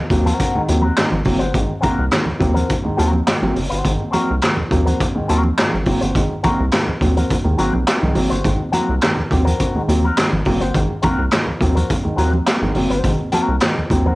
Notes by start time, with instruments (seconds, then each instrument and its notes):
0.10 analog synth bass D#2, upright piano F#3 A#3 C4, kick, closed hi-hat
0.25 upright piano A#3 C4, clean electric guitar C4 F#4 A#4, closed hi-hat, high conga
0.39 upright piano A#3 C4, clean electric guitar C4 F#4 A#4, kick, closed hi-hat, muted conga
0.55 analog synth bass D#2, upright piano G#2 D#3
0.68 analog synth bass D#2, upright piano F#3 A#3 C4, muted clean electric guitar stroke, closed hi-hat
0.81 clean electric guitar C4 F#4 A#4, high conga
0.96 upright piano G#2 D#3, muted clean electric guitar stroke, snare, clap, closed hi-hat
1.12 analog synth bass G#1, muted clean electric guitar stroke, high conga
1.25 analog synth bass F#1, upright piano F#3 A#3 C4, kick, open hi-hat, muted conga, low conga
1.39 analog synth bass G1, upright piano A#3 C4, clean electric guitar C4 F#4 C5, closed hi-hat
1.54 analog synth bass G#1, upright piano G#2 D#3, kick, closed hi-hat, low conga
1.81 upright piano A#3 C4, clean electric guitar C4 F#4 A#4, kick, closed hi-hat, high conga
1.99 analog synth bass C2
2.10 upright piano G#2 D#3, muted clean electric guitar stroke, snare, clap, closed hi-hat
2.25 analog synth bass D#2, muted clean electric guitar stroke, high conga, low conga
2.40 analog synth bass D#2, upright piano F#3 A#3 C4, kick, closed hi-hat, muted conga
2.54 upright piano A#3 C4, clean electric guitar C4 F#4 A#4, closed hi-hat, high conga
2.69 upright piano A#3 C4, kick, closed hi-hat
2.84 analog synth bass D#2, upright piano G#2 D#3, muted clean electric guitar stroke
2.97 analog synth bass D#2, upright piano F#3 A#3 C4, clean electric guitar C4 F#4 A#4, closed hi-hat, muted conga
3.12 muted clean electric guitar stroke, high conga
3.26 upright piano G#2 D#3, muted clean electric guitar stroke, snare, clap, closed hi-hat, muted conga
3.41 analog synth bass G#1, upright piano F#3 A#3 C4, muted clean electric guitar stroke, high conga
3.56 analog synth bass F#1, upright piano A#3 C4, open hi-hat, muted conga, low conga
3.69 analog synth bass G1, clean electric guitar C4 F#4 C5, closed hi-hat
3.85 analog synth bass G#1, upright piano G#2 D#3, kick, closed hi-hat, low conga
4.01 upright piano A#3 C4
4.11 upright piano F#3 A#3 C4, clean electric guitar C4 F#4 A#4, closed hi-hat, muted conga, high conga
4.31 analog synth bass C2
4.42 upright piano G#2 D#3, muted clean electric guitar stroke, snare, clap, closed hi-hat
4.56 analog synth bass D#2, muted clean electric guitar stroke, high conga, low conga
4.71 analog synth bass D#2, upright piano F#3 A#3 C4, kick, closed hi-hat
4.85 upright piano A#3 C4, clean electric guitar C4 F#4 A#4, closed hi-hat, high conga
5.00 upright piano A#3 C4, kick, closed hi-hat
5.15 analog synth bass D#2, upright piano G#2 D#3, muted clean electric guitar stroke
5.28 analog synth bass D#2, upright piano F#3 A#3 C4, clean electric guitar C4 F#4 A#4, closed hi-hat
5.43 muted clean electric guitar stroke, high conga
5.58 upright piano G#2 D#3, muted clean electric guitar stroke, snare, clap, closed hi-hat, muted conga
5.73 analog synth bass G#1, muted clean electric guitar stroke, high conga
5.86 analog synth bass F#1, upright piano F#3 A#3 C4, kick, open hi-hat, muted conga, low conga
6.01 analog synth bass G1, upright piano A#3 C4, clean electric guitar C4 F#4 C5, closed hi-hat
6.15 analog synth bass G#1, upright piano G#2 D#3, kick, closed hi-hat, muted conga, low conga
6.43 upright piano A#3 C4, clean electric guitar C4 F#4 A#4, kick, closed hi-hat, muted conga, high conga
6.60 analog synth bass C2
6.72 upright piano G#2 D#3, muted clean electric guitar stroke, snare, clap, closed hi-hat
6.87 analog synth bass D#2, muted clean electric guitar stroke, high conga, low conga
7.01 analog synth bass D#2, upright piano F#3 A#3 C4, kick, closed hi-hat
7.17 upright piano A#3 C4, clean electric guitar C4 F#4 A#4, closed hi-hat, high conga
7.30 upright piano A#3 C4, kick, closed hi-hat, muted conga
7.44 analog synth bass D#2, upright piano G#2 D#3, muted clean electric guitar stroke
7.58 analog synth bass G#1, upright piano F#3 A#3 C4, clean electric guitar C4 F#4 A#4, closed hi-hat, muted conga
7.73 analog synth bass B1, muted clean electric guitar stroke, high conga
7.87 upright piano A#3 C4, muted clean electric guitar stroke, snare, clap, closed hi-hat
8.02 analog synth bass C2, upright piano G#2 D#3, high conga
8.15 analog synth bass G#1, upright piano F#3 A#3 C4, open hi-hat, muted conga, low conga
8.30 analog synth bass G1, clean electric guitar C4 F#4 C5, closed hi-hat
8.44 analog synth bass G#1, upright piano G#2 D#3, kick, closed hi-hat, low conga
8.60 upright piano A#3 C4
8.72 upright piano F#3 A#3 C4, clean electric guitar C4 F#4 A#4, closed hi-hat, muted conga, high conga
8.89 analog synth bass C2
9.01 upright piano G#2 D#3, muted clean electric guitar stroke, snare, clap, closed hi-hat, muted conga
9.16 analog synth bass D#2, muted clean electric guitar stroke, high conga, low conga
9.31 analog synth bass D#2, upright piano F#3 A#3 C4, kick, closed hi-hat, muted conga
9.44 upright piano A#3 C4, clean electric guitar C4 F#4 A#4, closed hi-hat, high conga
9.59 upright piano A#3 C4, clean electric guitar C4 F#4 A#4, kick, closed hi-hat
9.74 analog synth bass D#2, upright piano G#2 D#3
9.88 analog synth bass D#2, upright piano F#3 A#3 C4, muted clean electric guitar stroke, closed hi-hat, muted conga
10.03 clean electric guitar C4 F#4 A#4, high conga
10.17 upright piano G#2 D#3, muted clean electric guitar stroke, snare, clap, closed hi-hat, muted conga
10.32 analog synth bass G#1, muted clean electric guitar stroke, high conga
10.45 analog synth bass F#1, upright piano F#3 A#3 C4, kick, open hi-hat, muted conga, low conga
10.60 analog synth bass G1, upright piano A#3 C4, clean electric guitar C4 F#4 C5, closed hi-hat
10.74 analog synth bass G#1, upright piano G#2 D#3, kick, closed hi-hat, muted conga, low conga
11.02 upright piano A#3 C4, clean electric guitar C4 F#4 A#4, kick, closed hi-hat, high conga
11.18 analog synth bass C2
11.31 upright piano G#2 D#3, muted clean electric guitar stroke, snare, clap, closed hi-hat, muted conga
11.47 analog synth bass D#2, muted clean electric guitar stroke, high conga, low conga
11.61 analog synth bass D#2, upright piano F#3 A#3 C4, kick, closed hi-hat
11.75 upright piano A#3 C4, clean electric guitar C4 F#4 A#4, closed hi-hat, high conga
11.89 upright piano A#3 C4, kick, closed hi-hat
12.04 analog synth bass D#2, upright piano G#2 D#3, muted clean electric guitar stroke
12.16 analog synth bass D#2, upright piano F#3 A#3 C4, clean electric guitar C4 F#4 A#4, closed hi-hat, muted conga
12.32 muted clean electric guitar stroke, high conga
12.46 upright piano A#3 C4, muted clean electric guitar stroke, snare, clap, closed hi-hat
12.61 analog synth bass G#1, upright piano G#2 D#3, muted clean electric guitar stroke, high conga
12.75 analog synth bass F#1, upright piano F#3 A#3 C4, open hi-hat, muted conga, low conga
12.90 analog synth bass G1, clean electric guitar C4 F#4 C5, closed hi-hat
13.04 analog synth bass G#1, upright piano G#2 D#3, kick, closed hi-hat, muted conga, low conga
13.19 upright piano A#3 C4
13.32 upright piano F#3 A#3 C4, clean electric guitar C4 F#4 A#4, closed hi-hat, muted conga, high conga
13.48 analog synth bass C2
13.60 upright piano G#2 D#3, muted clean electric guitar stroke, snare, clap, closed hi-hat, muted conga
13.75 analog synth bass D#2, muted clean electric guitar stroke, high conga, low conga
13.90 analog synth bass D#2, upright piano F#3 A#3 C4, kick, closed hi-hat
14.06 upright piano A#3 C4, clean electric guitar C4 F#4 A#4, high conga